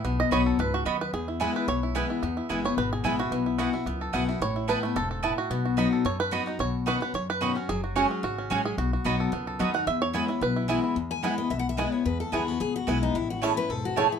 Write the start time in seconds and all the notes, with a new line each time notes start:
0.04 B1 B2 B3
0.20 D#5
0.31 B1 F#3 B3 D#4 F#4 C#5 D#5 B5
0.46 A4
0.58 C#2 G#2 B4
0.74 F#4
0.85 D#2 F#2 B3 F#4 D#5 B5
1.01 B4
1.13 E2 G#4
1.28 E4
1.40 E3 G#3 B3 E4 B4 G#5
1.56 B4
1.68 B1 B2 C#5
1.83 E4
1.95 E3 G#3 B3 E4 B4 G#5
2.10 E4
2.23 E2 B3
2.37 E4
2.49 F#1 E3 G#3 B3 E4 B4 G#5
2.65 B3 E4 C#5
2.77 G#1 B2 B4
2.93 G#4
3.04 A1 E3 G#3 B3 E4 B4 G#5
3.19 B3 E4 F#4
3.31 B1 B2 B3
3.46 E4
3.58 E3 B3 E4 F#4 B4 F#5
3.73 E4 F#4
3.86 C#2 F#2 B3
4.01 A4
4.13 B1 E3 B3 E4 F#4 B4 F#5
4.29 E4 F#4
4.41 A1 A2 C#5
4.56 E4
4.68 E3 A3 B3 E4 B4 A5
4.83 A3 B3 E4
4.96 E1 G#2 A4
5.11 A4
5.23 A2 B3 E4 B4 A5
5.38 F#4
5.50 B1 B2 B3
5.65 F#4
5.77 F#3 B3 D#4 F#4 D#5 B5
5.93 A4
6.05 F#2 C#5
6.20 B4
6.31 F#3 B3 D#4 F#4 D#5 B5
6.46 D#4 F#4
6.59 B1 B2 C#5
6.86 B2 D#3 C#4 D#4 F#4 B4 F#5 C#6
7.01 C#4 F#4 B4
7.14 F#2 C#5
7.30 B4
7.41 B2 D#3 C#4 D#4 F#4 B4 F#5 C#6
7.55 C#4 F#4
7.69 F#1 F#3 G#4
7.84 F#4
7.96 F#3 G#3 C#4 F#4 G#4 C#5 G#5
8.11 C#4
8.23 G#1 C#3 F#4
8.38 C#4
8.50 A1 F#3 G#3 C#4 F#4 G#4 C#5 G#5
8.65 G#4
8.78 B1 B2 F#4
8.93 F#4
9.05 B1 F#3 B3 D#4 F#4 D#5 B5
9.20 A4
9.32 C#2 F#2 B3
9.47 A4
9.59 D#2 F#3 B3 D#4 F#4 D#5 B5
9.74 D#4 F#4 F#5
9.87 E2 E5
10.02 C#5
10.13 E3 G#3 B3 E4 B4 G#5
10.28 B3 E4
10.41 B1 B2 B4
10.56 E4
10.68 E3 G#3 B3 E4 B4 G#5
10.84 E4
10.96 E2
11.11 G#5
11.23 E3 G#3 B3 E4 B4 F#5 G#5
11.38 B3 E4 D#5
11.50 B1 B2 E5
11.59 F#5
11.69 E5
11.77 E3 G#3 B3 E4 B4 D#5 G#5
11.92 B3 E4 C#5
12.05 E2 B4
12.20 A4
12.32 D#2 E3 G#3 B3 E4 G#4 B4 G#5
12.47 B3 E4 F#4
12.60 C#2 B2 G#4
12.76 F#4
12.87 B1 E3 G#3 B3 E4 B4 G#5
13.03 D#4
13.15 A1 A2 E4
13.30 F#4
13.41 E3 A3 C#4 E4 G#4 C#5 A5
13.56 C#4 E4 B4
13.69 E1 G#2 A4
13.85 F#4
13.96 A2 A3 C#4 E4 G#4 C#5 A5
14.12 E4